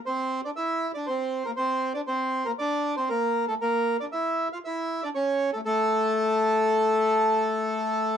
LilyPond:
\new Staff \with { instrumentName = "Bandoneon" } { \time 4/4 \key a \phrygian \tempo 4 = 117 <c' c''>8. <d' d''>16 <e' e''>8. <d' d''>16 <c' c''>8. <bes bes'>16 <c' c''>8. <d' d''>16 | <c' c''>8. <bes bes'>16 <d' d''>8. <c' c''>16 <bes bes'>8. <a a'>16 <bes bes'>8. <d' d''>16 | <e' e''>8. <f' f''>16 <e' e''>8. <d' d''>16 <cis' cis''>8. <a a'>16 <a a'>4~ | <a a'>1 | }